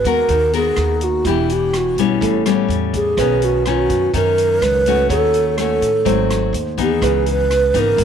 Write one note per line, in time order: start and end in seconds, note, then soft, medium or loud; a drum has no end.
0.00 0.27 G#3 medium
0.00 1.31 F#4 medium
0.04 0.27 D#2 medium
0.04 0.50 B3 medium
0.04 0.50 F#4 medium
0.04 0.50 A#4 medium
0.04 0.55 A#4 loud
0.04 kick medium
0.04 closed hi-hat soft
0.29 0.74 D#2 medium
0.29 1.23 D#3 medium
0.29 kick medium
0.29 closed hi-hat medium
0.53 1.22 B3 medium
0.53 1.22 F#4 medium
0.53 1.05 G#4 loud
0.53 1.22 A#4 medium
0.53 closed hi-hat soft
0.76 1.22 D#2 loud
0.76 cross-stick medium
0.76 closed hi-hat soft
1.01 1.28 F#4 medium
1.01 closed hi-hat soft
1.24 1.93 E1 medium
1.24 1.99 E3 medium
1.24 1.95 B3 medium
1.24 1.95 D4 medium
1.24 1.54 E4 medium
1.24 2.17 G4 medium
1.24 1.95 G4 medium
1.24 kick medium
1.24 closed hi-hat medium
1.49 1.78 G4 medium
1.49 closed hi-hat soft
1.74 2.02 F#4 medium
1.74 cross-stick medium
1.74 closed hi-hat soft
1.96 2.19 B1 medium
1.96 2.43 G3 medium
1.96 2.43 B3 medium
1.96 2.43 C#4 medium
1.96 closed hi-hat soft
2.00 2.47 E4 medium
2.21 2.66 A1 medium
2.21 3.16 A2 medium
2.21 3.20 A4 medium
2.21 kick medium
2.21 closed hi-hat medium
2.46 3.14 G3 medium
2.46 3.14 B3 medium
2.46 3.14 C#4 medium
2.46 cross-stick medium
2.46 closed hi-hat soft
2.68 3.14 E2 medium
2.68 closed hi-hat soft
2.94 3.46 G#4 medium
2.94 kick medium
2.94 closed hi-hat soft
3.17 3.86 B1 medium
3.17 4.12 B2 medium
3.17 3.63 D#3 medium
3.17 3.63 C#4 medium
3.17 5.16 B4 medium
3.17 kick medium
3.17 cross-stick medium
3.17 closed hi-hat medium
3.42 3.67 F#4 medium
3.42 closed hi-hat soft
3.65 4.10 D#3 medium
3.65 4.11 C#4 medium
3.65 4.12 F#4 medium
3.65 cross-stick medium
3.65 closed hi-hat soft
3.89 4.12 F#2 medium
3.89 kick soft
3.89 closed hi-hat soft
4.13 5.08 F#2 medium
4.13 4.58 F#2 medium
4.13 4.82 D#3 medium
4.13 4.83 C#4 medium
4.13 4.64 A#4 loud
4.13 kick medium
4.13 closed hi-hat medium
4.38 closed hi-hat soft
4.61 5.06 C#2 medium
4.61 5.10 B4 loud
4.61 cross-stick medium
4.61 closed hi-hat soft
4.86 5.55 A3 medium
4.86 5.55 C#4 medium
4.86 5.56 F#4 medium
4.86 closed hi-hat soft
5.09 5.78 D#2 medium
5.09 6.04 D#3 medium
5.09 5.55 A4 medium
5.09 6.09 C#5 medium
5.09 kick medium
5.09 closed hi-hat medium
5.34 closed hi-hat soft
5.58 5.90 A3 medium
5.58 5.90 C#4 medium
5.58 5.90 F#4 medium
5.58 6.51 A4 medium
5.58 cross-stick medium
5.58 closed hi-hat soft
5.82 6.04 A2 medium
5.82 closed hi-hat soft
6.05 6.51 G#1 medium
6.05 7.00 G#2 medium
6.05 6.54 F#3 medium
6.05 6.54 A3 medium
6.05 6.54 C4 medium
6.05 6.74 C5 medium
6.05 kick medium
6.05 closed hi-hat medium
6.30 cross-stick medium
6.30 closed hi-hat soft
6.53 6.98 D#2 medium
6.53 closed hi-hat soft
6.78 7.46 E3 medium
6.78 7.47 B3 medium
6.78 7.47 D#4 medium
6.78 kick medium
6.78 closed hi-hat soft
6.82 7.25 G#4 medium
7.01 7.70 C#2 medium
7.01 7.96 C#3 medium
7.01 8.04 B4 medium
7.01 kick medium
7.01 cross-stick medium
7.01 closed hi-hat medium
7.26 closed hi-hat soft
7.30 7.80 B4 medium
7.51 cross-stick medium
7.51 closed hi-hat soft
7.74 7.97 G#1 medium
7.74 8.04 E3 medium
7.74 8.04 B3 medium
7.74 8.04 D#4 medium
7.74 kick medium
7.74 closed hi-hat soft
7.79 8.04 A#4 loud
7.97 8.04 G#1 medium
7.97 8.04 G#2 medium
7.97 kick medium
7.97 closed hi-hat medium